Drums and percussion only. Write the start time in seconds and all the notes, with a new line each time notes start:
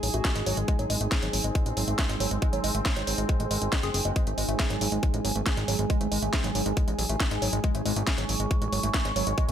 0.03 open hi-hat
0.14 closed hi-hat
0.25 kick, snare, closed hi-hat
0.36 closed hi-hat
0.46 open hi-hat
0.57 closed hi-hat
0.68 kick, closed hi-hat
0.79 closed hi-hat
0.90 open hi-hat
1.01 closed hi-hat
1.12 kick, snare, closed hi-hat
1.23 closed hi-hat
1.33 open hi-hat
1.44 closed hi-hat
1.55 kick, closed hi-hat
1.66 closed hi-hat
1.77 open hi-hat
1.88 closed hi-hat
1.99 kick, snare, closed hi-hat
2.09 closed hi-hat
2.20 open hi-hat
2.31 closed hi-hat
2.42 kick, closed hi-hat
2.53 closed hi-hat
2.64 open hi-hat
2.75 closed hi-hat
2.86 kick, snare, closed hi-hat
2.96 closed hi-hat
3.07 open hi-hat
3.18 closed hi-hat
3.29 kick, closed hi-hat
3.40 closed hi-hat
3.51 open hi-hat
3.62 closed hi-hat
3.73 kick, snare, closed hi-hat
3.83 closed hi-hat
3.94 open hi-hat
4.05 closed hi-hat
4.16 kick, closed hi-hat
4.27 closed hi-hat
4.38 open hi-hat
4.49 closed hi-hat
4.59 kick, snare, closed hi-hat
4.70 closed hi-hat
4.81 open hi-hat
4.92 closed hi-hat
5.03 kick, closed hi-hat
5.14 closed hi-hat
5.25 open hi-hat
5.36 closed hi-hat
5.46 kick, snare, closed hi-hat
5.57 closed hi-hat
5.68 open hi-hat
5.79 closed hi-hat
5.90 kick, closed hi-hat
6.01 closed hi-hat
6.12 open hi-hat
6.22 closed hi-hat
6.33 kick, snare, closed hi-hat
6.44 closed hi-hat
6.55 open hi-hat
6.66 closed hi-hat
6.77 kick, closed hi-hat
6.88 closed hi-hat
6.99 open hi-hat
7.09 closed hi-hat
7.20 kick, snare, closed hi-hat
7.31 closed hi-hat
7.42 open hi-hat
7.53 closed hi-hat
7.64 kick, closed hi-hat
7.75 closed hi-hat
7.86 open hi-hat
7.96 closed hi-hat
8.07 kick, snare, closed hi-hat
8.18 closed hi-hat
8.29 open hi-hat
8.40 closed hi-hat
8.51 kick, closed hi-hat
8.62 closed hi-hat
8.73 open hi-hat
8.83 closed hi-hat
8.94 kick, snare, closed hi-hat
9.05 closed hi-hat
9.16 open hi-hat
9.27 closed hi-hat
9.38 kick, closed hi-hat
9.49 closed hi-hat